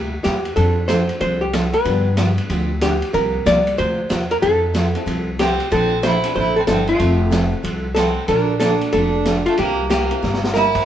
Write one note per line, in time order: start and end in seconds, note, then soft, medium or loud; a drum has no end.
0.00 0.20 D2 medium
0.00 0.13 C3 soft
0.00 0.13 G3 soft
0.00 0.13 A#3 medium
0.00 0.13 E4 medium
0.00 0.13 G4 medium
0.24 0.52 E2 medium
0.24 0.36 C3 medium
0.24 0.36 G3 medium
0.24 0.36 A#3 medium
0.24 0.36 E4 medium
0.24 0.56 G4 medium
0.24 0.36 G4 medium
0.24 snare medium
0.24 hi-hat pedal soft
0.24 ride medium
0.45 ride soft
0.56 1.08 F2 medium
0.56 0.78 F3 medium
0.56 1.46 C4 medium
0.56 0.78 C4 medium
0.56 1.46 D4 medium
0.56 0.78 D4 medium
0.56 1.46 F4 medium
0.56 0.89 A4 medium
0.56 1.46 A4 medium
0.56 0.78 A4 medium
0.56 ride medium
0.88 1.00 F3 medium
0.88 1.00 C4 medium
0.88 1.01 D4 medium
0.88 1.01 A4 medium
0.88 1.20 C5 medium
0.88 snare medium
0.88 hi-hat pedal medium
0.88 ride medium
1.09 ride soft
1.21 1.72 C2 medium
1.21 1.42 F3 medium
1.21 1.42 C4 medium
1.21 1.43 D4 medium
1.21 1.43 A4 medium
1.21 1.42 C5 medium
1.21 ride medium
1.41 1.53 G4 medium
1.53 1.64 F3 medium
1.53 1.64 C4 medium
1.53 1.65 D4 medium
1.53 1.74 A4 medium
1.53 1.65 A4 medium
1.53 snare medium
1.53 hi-hat pedal medium
1.53 ride medium
1.73 2.14 B4 medium
1.73 ride soft
1.85 2.37 G2 medium
1.85 2.06 D3 medium
1.85 2.06 F3 medium
1.85 2.06 B3 medium
1.85 2.75 B3 medium
1.85 2.75 D4 medium
1.85 2.06 D4 medium
1.85 2.75 F4 medium
1.85 2.06 G4 medium
1.85 2.75 G4 medium
1.85 ride medium
2.17 2.29 D3 medium
2.17 2.29 F3 medium
2.17 2.29 B3 medium
2.17 2.29 D4 medium
2.17 2.29 G4 medium
2.17 snare medium
2.17 hi-hat pedal medium
2.17 ride medium
2.38 ride soft
2.50 3.01 D2 medium
2.50 2.71 D3 soft
2.50 2.71 F3 medium
2.50 2.71 B3 medium
2.50 2.71 D4 medium
2.50 2.71 G4 medium
2.50 ride medium
2.81 2.93 D3 medium
2.81 2.93 F3 medium
2.81 2.93 B3 medium
2.81 2.93 D4 medium
2.81 3.14 G4 medium
2.81 2.93 G4 medium
2.81 snare medium
2.81 hi-hat pedal medium
2.81 ride medium
3.02 ride soft
3.13 3.40 C2 medium
3.13 3.34 C3 medium
3.13 3.35 F3 medium
3.13 3.35 A#3 medium
3.13 4.03 A#3 medium
3.13 4.03 C4 soft
3.13 3.35 F4 medium
3.13 4.03 F4 soft
3.13 4.03 G4 medium
3.13 3.35 G4 medium
3.13 3.47 A#4 medium
3.13 ride soft
3.46 3.73 C2 medium
3.46 3.57 C3 medium
3.46 3.57 F3 medium
3.46 3.57 A#3 medium
3.46 3.57 F4 medium
3.46 3.58 G4 medium
3.46 3.78 D5 loud
3.46 snare medium
3.46 hi-hat pedal medium
3.46 ride medium
3.67 ride soft
3.78 4.06 D2 medium
3.78 3.99 C3 medium
3.78 3.99 F3 medium
3.78 3.99 A#3 medium
3.78 3.99 F4 medium
3.78 3.99 G4 medium
3.78 4.32 C5 loud
3.78 ride medium
4.09 4.38 E2 medium
4.09 4.21 C3 medium
4.09 4.21 F3 medium
4.09 4.21 A#3 medium
4.09 4.21 F4 medium
4.09 4.22 G4 medium
4.09 snare medium
4.09 hi-hat pedal medium
4.09 ride medium
4.31 4.36 A#4 medium
4.31 ride soft
4.42 4.94 F2 medium
4.42 4.63 F3 medium
4.42 4.61 C4 medium
4.42 4.63 C4 medium
4.42 4.64 E4 medium
4.42 4.61 E4 medium
4.42 4.61 F4 soft
4.42 5.12 A4 medium
4.42 4.64 A4 medium
4.42 4.61 A4 medium
4.42 ride medium
4.74 4.85 F3 medium
4.74 4.86 C4 medium
4.74 4.86 E4 medium
4.74 4.86 A4 medium
4.74 snare medium
4.74 hi-hat pedal medium
4.74 ride medium
4.95 5.36 C4 medium
4.95 5.36 E4 medium
4.95 5.37 F4 medium
4.95 5.37 A4 medium
4.95 ride soft
5.06 5.58 C2 medium
5.06 5.27 F3 medium
5.06 5.28 C4 medium
5.06 5.28 E4 medium
5.06 5.28 A4 medium
5.06 ride medium
5.12 5.39 G4 medium
5.39 5.50 F3 medium
5.39 5.51 C4 medium
5.39 5.69 C4 medium
5.39 5.51 E4 medium
5.39 5.69 G4 medium
5.39 5.51 A4 medium
5.39 snare medium
5.39 hi-hat pedal medium
5.39 ride medium
5.60 ride soft
5.71 6.23 A#1 medium
5.71 5.92 D3 medium
5.71 5.92 F3 medium
5.71 5.93 A#3 medium
5.71 6.02 C4 medium
5.71 5.92 D4 medium
5.71 5.93 A4 medium
5.71 6.02 A4 medium
5.71 ride medium
6.02 6.14 D3 medium
6.02 6.15 F3 medium
6.02 6.14 A#3 medium
6.02 6.15 D4 medium
6.02 6.34 E4 medium
6.02 6.15 A4 medium
6.02 6.34 C5 medium
6.02 snare medium
6.02 hi-hat pedal medium
6.02 ride medium
6.24 6.34 C4 medium
6.24 6.35 D4 medium
6.24 6.35 E4 medium
6.24 6.35 A4 medium
6.24 ride medium
6.36 6.63 A1 medium
6.36 6.57 D3 medium
6.36 6.57 F3 medium
6.36 6.57 A#3 soft
6.36 6.57 D4 medium
6.36 6.56 E4 medium
6.36 6.57 A4 medium
6.36 6.55 C5 medium
6.56 6.63 C4 medium
6.56 6.61 A4 medium
6.66 6.95 G1 medium
6.66 6.79 D3 medium
6.66 6.79 F3 medium
6.66 6.79 A#3 medium
6.66 6.99 C4 medium
6.66 7.00 D4 medium
6.66 6.79 D4 medium
6.66 7.00 E4 medium
6.66 6.87 A4 medium
6.66 6.79 A4 medium
6.66 7.00 C5 medium
6.66 snare medium
6.66 hi-hat pedal medium
6.66 ride medium
6.71 6.88 C4 medium
6.87 7.30 A3 medium
6.87 7.29 F4 medium
6.87 ride soft
6.99 7.51 F1 medium
6.99 7.21 F3 medium
6.99 7.21 C4 medium
6.99 7.21 E4 medium
6.99 7.21 A4 medium
6.99 ride medium
7.31 7.43 F3 medium
7.31 7.80 C4 medium
7.31 7.43 C4 medium
7.31 7.80 E4 medium
7.31 7.43 E4 medium
7.31 7.80 F4 medium
7.31 7.80 A4 medium
7.31 7.44 A4 medium
7.31 snare medium
7.31 hi-hat pedal medium
7.31 ride medium
7.63 8.16 C2 medium
7.63 7.85 F3 medium
7.63 7.85 C4 medium
7.63 7.85 E4 medium
7.63 7.86 A4 medium
7.63 ride medium
7.95 8.08 F3 medium
7.95 8.27 C4 medium
7.95 8.08 C4 medium
7.95 8.08 E4 medium
7.95 8.25 A4 medium
7.95 8.08 A4 medium
7.95 snare medium
7.95 hi-hat pedal medium
7.95 ride medium
8.27 8.80 A#1 medium
8.27 8.50 D3 medium
8.27 8.50 F3 medium
8.27 8.50 A#3 medium
8.27 8.58 D4 medium
8.27 8.50 D4 medium
8.27 8.50 A4 medium
8.27 8.59 A#4 medium
8.27 ride medium
8.60 8.72 D3 medium
8.60 8.72 F3 medium
8.60 8.72 A#3 medium
8.60 9.10 A#3 medium
8.60 8.72 D4 medium
8.60 9.10 D4 medium
8.60 8.91 D4 medium
8.60 9.10 F4 medium
8.60 8.90 A4 medium
8.60 8.72 A4 medium
8.60 9.10 A4 medium
8.60 snare medium
8.60 hi-hat pedal medium
8.60 ride medium
8.81 ride soft
8.92 9.45 F1 medium
8.92 9.14 D3 soft
8.92 9.14 F3 medium
8.92 9.15 A#3 medium
8.92 9.15 D4 medium
8.92 9.43 D4 medium
8.92 9.47 A4 medium
8.92 9.15 A4 medium
8.92 ride medium
9.25 9.37 D3 medium
9.25 9.37 F3 medium
9.25 9.38 A#3 medium
9.25 9.38 D4 medium
9.25 9.38 A4 medium
9.25 snare medium
9.25 hi-hat pedal medium
9.25 ride medium
9.46 9.58 A3 medium
9.46 9.58 F4 medium
9.46 ride soft
9.57 10.10 C2 medium
9.57 9.79 C3 medium
9.57 9.79 G3 medium
9.57 9.76 A#3 medium
9.57 9.88 A#3 medium
9.57 9.79 A#3 medium
9.57 9.77 C4 soft
9.57 9.79 E4 medium
9.57 9.77 E4 medium
9.57 9.79 G4 medium
9.57 9.89 G4 medium
9.57 9.77 G4 medium
9.57 ride medium
9.90 10.01 C3 medium
9.90 10.02 G3 medium
9.90 10.02 A#3 medium
9.90 10.39 A#3 medium
9.90 10.02 E4 medium
9.90 10.39 G4 medium
9.90 10.02 G4 medium
9.90 snare medium
9.90 hi-hat pedal medium
9.90 ride medium
10.11 10.21 A#3 medium
10.11 10.21 C4 soft
10.11 10.22 E4 medium
10.11 10.22 A#4 medium
10.11 ride soft
10.22 10.74 G1 medium
10.22 10.43 C3 soft
10.22 10.44 G3 medium
10.22 10.44 A#3 medium
10.22 10.44 E4 medium
10.22 10.44 G4 medium
10.22 snare soft
10.33 snare medium
10.44 snare medium
10.54 10.66 C3 medium
10.54 10.66 G3 medium
10.54 10.66 A#3 medium
10.54 10.85 E4 medium
10.54 10.66 E4 medium
10.54 10.66 G4 medium
10.54 10.85 A#4 medium
10.54 snare medium
10.54 hi-hat pedal medium
10.75 kick medium
10.75 crash medium